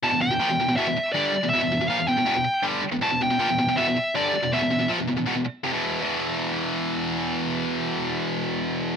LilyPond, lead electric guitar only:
\new Staff \with { instrumentName = "Lead electric guitar" } { \time 4/4 \key e \phrygian \tempo 4 = 160 a''8 g''4. e''4 d''4 | e''4 f''8 g''4. r4 | a''8 g''4. e''4 d''4 | e''4 r2. |
r1 | r1 | }